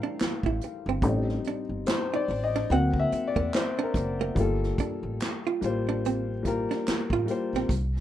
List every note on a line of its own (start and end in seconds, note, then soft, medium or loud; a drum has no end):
0.00 0.16 E3 medium
0.00 0.16 G3 medium
0.00 0.16 A3 soft
0.00 0.17 D4 medium
0.00 1.04 A#4 medium
0.00 1.05 C5 medium
0.00 1.13 F5 loud
0.19 muted upright bass stroke soft
0.19 snare loud
0.19 clap medium
0.19 closed hi-hat medium
0.43 0.58 A1 medium
0.43 0.59 E4 medium
0.43 kick medium
0.61 muted hollow-body jazz guitar stroke soft
0.61 closed hi-hat medium
0.86 1.03 G1 medium
0.86 1.02 C4 medium
1.02 1.37 A1 medium
1.02 1.61 G3 medium
1.02 1.61 C4 soft
1.02 1.61 D#4 medium
1.02 kick loud
1.02 closed hi-hat medium
1.29 snare soft
1.44 1.66 D4 medium
1.44 closed hi-hat medium
1.69 1.83 G1 medium
1.86 2.15 C5 medium
1.86 snare loud
1.86 clap medium
1.86 closed hi-hat medium
2.14 2.26 D#4 medium
2.14 2.43 D5 medium
2.28 2.62 A1 medium
2.28 muted hollow-body jazz guitar stroke soft
2.28 open hi-hat soft
2.44 2.71 D#5 medium
2.54 2.68 D4 medium
2.54 snare soft
2.70 3.04 D2 loud
2.70 3.28 F#3 medium
2.70 3.28 A#3 soft
2.70 2.91 C4 medium
2.70 3.29 C4 medium
2.70 2.99 F#5 medium
2.70 closed hi-hat medium
2.94 kick medium
2.99 3.27 E5 medium
3.12 muted upright bass stroke soft
3.12 muted hollow-body jazz guitar stroke soft
3.12 closed hi-hat medium
3.27 3.33 D5 medium
3.36 3.50 E2 medium
3.36 3.50 A#3 medium
3.36 kick medium
3.53 3.82 C5 medium
3.53 snare loud
3.53 clap medium
3.53 closed hi-hat medium
3.79 3.92 D4 medium
3.83 4.21 A#4 medium
3.94 4.29 F#1 medium
3.94 muted hollow-body jazz guitar stroke soft
3.94 kick medium
3.94 closed hi-hat medium
4.21 4.34 A#3 medium
4.35 4.71 G1 medium
4.35 5.38 G3 medium
4.35 5.38 A#3 medium
4.35 5.39 F4 medium
4.35 kick loud
4.35 closed hi-hat medium
4.40 5.40 A4 medium
4.63 snare soft
4.78 4.99 D4 medium
4.78 kick medium
4.78 closed hi-hat medium
5.03 5.17 A1 medium
5.20 snare medium
5.20 clap medium
5.20 closed hi-hat medium
5.47 5.60 F4 medium
5.61 6.65 A1 medium
5.61 6.30 G3 medium
5.61 6.31 A#3 medium
5.61 6.31 F4 medium
5.61 muted hollow-body jazz guitar stroke soft
5.61 closed hi-hat medium
5.65 6.32 C5 medium
5.89 6.01 D4 medium
6.05 6.24 C4 medium
6.05 closed hi-hat medium
6.43 7.13 G3 medium
6.43 7.13 A#3 medium
6.43 7.14 F4 medium
6.43 kick medium
6.43 closed hi-hat medium
6.47 7.15 A#4 medium
6.47 muted hollow-body jazz guitar stroke soft
6.71 6.84 D4 medium
6.71 snare soft
6.86 muted upright bass stroke soft
6.86 snare loud
6.86 clap medium
6.86 closed hi-hat medium
7.10 7.25 A1 medium
7.10 7.26 F4 medium
7.10 kick medium
7.26 7.68 G3 medium
7.26 7.69 A#3 medium
7.26 7.70 F4 medium
7.26 closed hi-hat medium
7.30 7.71 C5 medium
7.30 muted hollow-body jazz guitar stroke soft
7.53 7.67 A#1 medium
7.53 7.68 C4 medium
7.53 snare soft
7.69 8.00 C2 medium
7.69 kick loud
7.69 closed hi-hat medium
7.96 snare soft